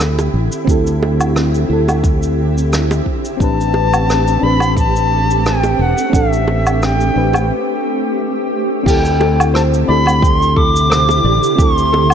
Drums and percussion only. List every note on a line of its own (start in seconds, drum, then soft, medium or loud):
0.00 cross-stick medium
0.00 cabasa medium
0.19 high bongo medium
0.19 cabasa soft
0.52 cabasa medium
0.67 kick loud
0.67 cabasa medium
0.87 cabasa soft
1.03 high bongo medium
1.21 cabasa medium
1.21 low woodblock medium
1.36 cross-stick medium
1.36 cabasa soft
1.54 cabasa medium
1.88 high bongo medium
1.88 cabasa medium
1.88 low woodblock medium
2.04 kick loud
2.04 cabasa medium
2.23 cabasa soft
2.58 cabasa medium
2.73 cross-stick medium
2.73 cabasa medium
2.91 high bongo medium
2.91 cabasa soft
3.06 kick medium
3.25 cabasa medium
3.40 kick loud
3.40 cabasa medium
3.61 cabasa soft
3.74 high bongo medium
3.94 cabasa medium
3.94 low woodblock medium
4.10 cross-stick medium
4.10 cabasa medium
4.27 cabasa medium
4.60 high bongo medium
4.60 cabasa medium
4.60 low woodblock medium
4.77 kick loud
4.77 cabasa medium
4.96 cabasa soft
5.31 cabasa medium
5.46 cross-stick medium
5.46 cabasa medium
5.64 high bongo medium
5.64 cabasa soft
5.98 cabasa medium
6.13 kick loud
6.13 cabasa medium
6.33 cabasa soft
6.48 high bongo medium
6.67 cabasa medium
6.67 low woodblock medium
6.82 cross-stick medium
6.82 cabasa medium
7.01 cabasa medium
7.33 high bongo medium
7.33 cabasa medium
7.33 low woodblock medium
8.86 kick loud
8.86 crash loud
8.86 cabasa medium
9.05 cabasa medium
9.21 high bongo medium
9.40 cabasa medium
9.40 low woodblock medium
9.55 cross-stick medium
9.55 cabasa medium
9.74 cabasa medium
10.06 high bongo medium
10.06 cabasa medium
10.06 low woodblock medium
10.22 kick loud
10.22 cabasa medium
10.42 cabasa soft
10.56 kick medium
10.76 cabasa medium
10.91 cross-stick medium
10.91 cabasa medium
11.09 high bongo medium
11.09 cabasa soft
11.43 cabasa medium
11.58 kick loud
11.58 cabasa medium
11.78 cabasa medium
11.94 high bongo medium
12.10 low woodblock medium